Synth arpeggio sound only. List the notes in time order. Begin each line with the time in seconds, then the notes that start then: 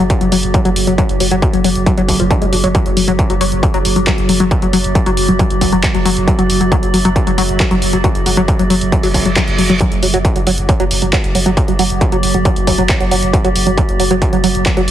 0.21 F#3
0.32 F#3
0.54 F#3
0.65 F#3
0.87 F#3
0.98 F#3
1.20 F#3
1.31 F#3
1.53 F#3
1.64 F#3
1.86 F#3
1.98 F#3
2.20 F3
2.30 D4
2.42 G#3
2.53 F#3
2.64 F#3
2.75 F#3
2.97 F#3
3.08 F#3
3.30 F#3
3.41 F#3
3.63 F#3
3.74 F#3
3.96 F#3
4.07 F#3
4.29 F#3
4.40 F#3
4.62 F#3
4.73 F#3
4.95 F#3
5.06 F#3
5.28 F#3
5.39 F#3
5.61 F#3
5.72 F#3
5.95 F#3
6.06 F#3
6.28 F#3
6.39 F#3
6.61 F#3
6.72 F#3
6.94 F#3
7.05 F#3
7.27 F#3
7.38 F#3
7.60 F#3
7.71 F#3
7.93 F#3
8.04 F#3
8.26 F#3
8.37 F#3
8.59 F#3
8.70 F#3
8.92 F#3
9.03 F#3
9.25 F#3
9.36 F#3
9.59 F#3
9.70 F#3
9.81 F#3
10.03 F#3
10.14 F#3
10.36 F#3
10.47 F#3
10.69 F#3
10.80 F#3
11.02 F#3
11.13 F#3
11.35 F#3
11.46 F#3
11.68 F#3
11.79 F#3
12.01 F#3
12.12 F#3
12.34 F#3
12.45 F#3
12.67 F#3
12.78 F#3
13.00 F#3
13.11 F#3
13.33 F#3
13.44 F#3
13.67 F#3
13.77 F#3
14.00 F#3
14.11 F#3
14.33 F#3
14.44 F#3
14.66 F#3
14.77 F#3